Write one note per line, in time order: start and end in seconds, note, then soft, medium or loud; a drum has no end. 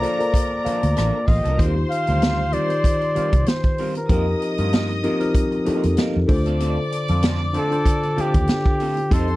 0.00 0.17 F3 medium
0.00 0.19 A#3 medium
0.00 0.18 A#3 medium
0.00 0.19 F4 medium
0.00 0.13 A4 medium
0.00 0.65 A#4 medium
0.00 1.19 A#4 medium
0.00 0.02 C5 medium
0.00 0.13 C5 medium
0.00 0.02 D5 medium
0.00 1.29 D5 medium
0.00 0.13 D5 medium
0.00 1.18 A#5 loud
0.00 closed hi-hat medium
0.04 0.18 D4 medium
0.04 0.18 A4 medium
0.19 0.48 A#3 medium
0.19 0.49 F4 medium
0.19 0.49 A4 medium
0.19 0.49 C5 medium
0.19 0.49 D5 medium
0.19 muted clean electric guitar stroke soft
0.19 closed hi-hat soft
0.34 kick medium
0.34 closed hi-hat medium
0.50 muted clean electric guitar stroke soft
0.64 0.83 F3 medium
0.64 1.24 A#3 medium
0.64 0.82 A#3 medium
0.64 0.82 D4 medium
0.64 1.24 F4 medium
0.64 0.81 A4 medium
0.64 1.24 A#4 medium
0.64 1.25 C5 medium
0.64 1.25 F5 medium
0.64 muted fingered electric bass stroke soft
0.64 cross-stick soft
0.64 closed hi-hat medium
0.83 0.94 D2 medium
0.83 muted clean electric guitar stroke soft
0.83 closed hi-hat medium
0.96 1.10 A1 medium
0.96 1.15 F3 medium
0.96 1.15 A#3 medium
0.96 1.15 D4 medium
0.96 1.15 A4 medium
0.96 cross-stick medium
0.96 closed hi-hat medium
1.27 1.41 A1 medium
1.27 1.36 F4 medium
1.27 1.64 D#5 medium
1.27 1.36 F5 medium
1.27 muted clean electric guitar stroke soft
1.27 kick medium
1.27 open hi-hat medium
1.36 1.45 G4 medium
1.36 1.45 G5 medium
1.44 1.56 C2 medium
1.44 1.57 F3 soft
1.44 1.58 A#3 soft
1.44 1.57 D4 soft
1.44 1.52 A4 medium
1.44 1.57 A4 medium
1.44 1.52 A5 medium
1.44 closed hi-hat medium
1.49 1.58 A#4 medium
1.49 1.58 A#5 medium
1.57 1.83 D#2 medium
1.57 2.18 D#3 medium
1.57 1.77 G3 medium
1.57 1.76 C4 medium
1.57 2.18 D#4 medium
1.57 2.18 F4 medium
1.57 1.75 F4 medium
1.57 1.66 F#4 medium
1.57 1.75 A#4 medium
1.57 3.74 C5 medium
1.57 2.18 C5 medium
1.57 3.74 C6 medium
1.57 kick medium
1.57 closed hi-hat medium
1.65 2.21 G4 medium
1.76 muted clean electric guitar stroke soft
1.90 2.55 F5 loud
1.90 muted clean electric guitar stroke soft
1.90 closed hi-hat medium
2.07 2.56 D2 medium
2.07 2.20 G3 soft
2.07 2.20 C4 soft
2.07 2.20 F4 medium
2.07 2.20 A#4 medium
2.07 closed hi-hat soft
2.21 2.40 G3 medium
2.21 2.38 C4 medium
2.21 2.38 F4 medium
2.21 2.37 A#4 medium
2.21 snare loud
2.21 closed hi-hat medium
2.38 muted clean electric guitar stroke soft
2.52 2.63 D#3 medium
2.52 2.67 G3 soft
2.52 2.68 C4 medium
2.52 2.63 D#4 medium
2.52 2.63 F4 medium
2.52 2.68 F4 medium
2.52 2.64 G4 medium
2.52 2.68 A#4 medium
2.52 2.64 C5 medium
2.52 3.49 D5 loud
2.52 closed hi-hat medium
2.69 2.99 D#3 medium
2.69 2.99 D#4 medium
2.69 2.99 F4 medium
2.69 2.99 G4 medium
2.69 2.99 C5 medium
2.69 muted clean electric guitar stroke soft
2.69 closed hi-hat soft
2.84 kick medium
2.84 closed hi-hat medium
3.01 muted clean electric guitar stroke soft
3.01 closed hi-hat soft
3.15 3.75 D#3 medium
3.15 3.34 G3 medium
3.15 3.33 C4 medium
3.15 3.75 D#4 medium
3.15 3.75 F4 medium
3.15 3.32 F4 medium
3.15 3.75 G4 medium
3.15 3.32 A#4 medium
3.15 3.23 B4 soft
3.15 muted fingered electric bass stroke soft
3.15 closed hi-hat medium
3.22 3.78 C5 medium
3.32 3.44 C2 medium
3.32 muted clean electric guitar stroke soft
3.32 kick medium
3.32 closed hi-hat medium
3.46 3.96 C5 medium
3.46 muted clean electric guitar stroke soft
3.46 snare medium
3.46 closed hi-hat medium
3.63 kick medium
3.63 closed hi-hat soft
3.78 3.93 G3 medium
3.78 3.93 C4 medium
3.78 3.93 F4 medium
3.78 3.94 A#4 medium
3.78 open hi-hat medium
3.95 4.55 A#4 medium
3.95 muted clean electric guitar stroke soft
3.95 closed hi-hat soft
4.09 4.34 F2 loud
4.09 4.69 F3 medium
4.09 4.28 A#3 medium
4.09 4.69 C4 medium
4.09 4.69 D#4 medium
4.09 4.27 D#4 medium
4.09 4.26 F4 medium
4.09 4.69 G4 medium
4.09 4.70 A#4 medium
4.09 4.26 A#4 medium
4.09 5.94 D#5 medium
4.09 5.94 D#6 loud
4.09 kick loud
4.09 closed hi-hat medium
4.27 muted clean electric guitar stroke soft
4.42 muted clean electric guitar stroke soft
4.42 closed hi-hat medium
4.58 5.06 G2 medium
4.58 4.71 A#3 soft
4.58 4.71 D#4 medium
4.58 4.71 F4 soft
4.58 4.71 A#4 medium
4.58 closed hi-hat medium
4.73 4.91 A#3 medium
4.73 4.89 D#4 medium
4.73 4.88 F4 medium
4.73 4.88 A#4 medium
4.73 snare loud
4.73 closed hi-hat medium
4.89 muted clean electric guitar stroke soft
4.89 closed hi-hat soft
5.03 5.14 F3 medium
5.03 5.18 A#3 medium
5.03 5.15 C4 medium
5.03 5.14 D#4 medium
5.03 5.18 D#4 medium
5.03 5.18 F4 medium
5.03 5.15 G4 medium
5.03 5.15 A#4 medium
5.03 5.19 A#4 medium
5.03 closed hi-hat medium
5.20 5.50 F3 medium
5.20 5.50 C4 medium
5.20 5.50 D#4 medium
5.20 5.50 G4 medium
5.20 5.50 A#4 loud
5.20 muted clean electric guitar stroke soft
5.20 closed hi-hat soft
5.35 kick medium
5.35 closed hi-hat medium
5.51 muted clean electric guitar stroke soft
5.51 closed hi-hat soft
5.65 6.25 F3 medium
5.65 5.87 A#3 medium
5.65 6.25 C4 medium
5.65 6.25 D#4 medium
5.65 5.83 D#4 medium
5.65 5.83 F4 medium
5.65 6.26 G4 medium
5.65 6.26 A4 medium
5.65 5.82 A#4 medium
5.65 muted fingered electric bass stroke soft
5.65 closed hi-hat medium
5.83 5.95 F2 medium
5.83 muted clean electric guitar stroke medium
5.83 closed hi-hat medium
5.97 6.16 A#3 medium
5.97 6.16 D#4 medium
5.97 6.16 F4 medium
5.97 6.17 A#4 medium
5.97 snare loud
5.97 closed hi-hat medium
6.16 6.27 F2 medium
6.27 6.77 D2 loud
6.27 7.29 D3 loud
6.27 7.29 D4 medium
6.27 7.30 F4 medium
6.27 7.30 A4 medium
6.27 7.30 C5 loud
6.27 8.76 D5 medium
6.27 8.76 D6 loud
6.27 muted clean electric guitar stroke soft
6.27 kick loud
6.27 open hi-hat medium
6.46 6.59 A3 soft
6.46 6.59 C4 soft
6.46 6.59 F4 medium
6.46 6.58 A4 medium
6.46 closed hi-hat medium
6.60 6.78 A3 medium
6.60 6.77 C4 medium
6.60 6.77 F4 medium
6.60 6.76 A4 medium
6.60 closed hi-hat medium
6.78 muted clean electric guitar stroke soft
6.92 muted clean electric guitar stroke soft
6.92 closed hi-hat medium
7.08 7.57 F2 medium
7.08 7.22 A3 soft
7.08 7.22 C4 soft
7.08 7.21 F4 medium
7.08 7.21 A4 medium
7.08 closed hi-hat soft
7.22 7.41 A3 medium
7.22 7.40 C4 medium
7.22 7.40 F4 medium
7.22 7.39 A4 medium
7.22 snare loud
7.22 closed hi-hat medium
7.41 muted clean electric guitar stroke soft
7.53 7.64 D3 medium
7.53 7.69 A3 medium
7.53 7.69 C4 medium
7.53 7.65 D4 medium
7.53 7.65 F4 medium
7.53 7.69 F4 medium
7.53 7.65 A4 medium
7.53 7.69 A4 medium
7.53 7.65 C5 medium
7.53 closed hi-hat medium
7.58 8.23 A4 loud
7.71 8.00 D3 medium
7.71 8.01 D4 medium
7.71 8.01 F4 medium
7.71 8.01 A4 medium
7.71 8.01 C5 medium
7.71 muted clean electric guitar stroke soft
7.71 closed hi-hat soft
7.85 kick medium
7.85 closed hi-hat medium
8.03 muted clean electric guitar stroke soft
8.03 closed hi-hat soft
8.16 8.76 D3 medium
8.16 8.35 A3 medium
8.16 8.34 C4 medium
8.16 8.76 D4 medium
8.16 8.76 F4 medium
8.16 8.33 F4 medium
8.16 8.76 A4 medium
8.16 8.33 A4 medium
8.16 8.76 C5 medium
8.16 muted fingered electric bass stroke soft
8.16 closed hi-hat medium
8.21 9.15 G4 loud
8.34 8.46 D#2 medium
8.34 muted clean electric guitar stroke medium
8.34 kick medium
8.34 closed hi-hat medium
8.47 muted clean electric guitar stroke soft
8.47 snare loud
8.47 closed hi-hat medium
8.65 kick medium
8.80 8.94 A3 medium
8.80 8.95 C4 medium
8.80 8.95 F4 medium
8.80 8.95 A4 medium
8.80 open hi-hat medium
8.97 muted clean electric guitar stroke soft
8.97 closed hi-hat soft
9.10 9.35 F2 loud
9.10 9.36 F3 medium
9.10 9.30 F3 medium
9.10 9.36 C4 medium
9.10 9.28 C4 medium
9.10 9.36 D#4 medium
9.10 9.28 D#4 medium
9.10 9.36 G4 medium
9.10 9.36 A4 loud
9.10 9.28 A4 medium
9.10 9.36 A4 loud
9.10 9.36 C5 loud
9.10 9.36 C6 loud
9.10 kick loud
9.10 closed hi-hat medium
9.28 muted clean electric guitar stroke soft
9.28 closed hi-hat soft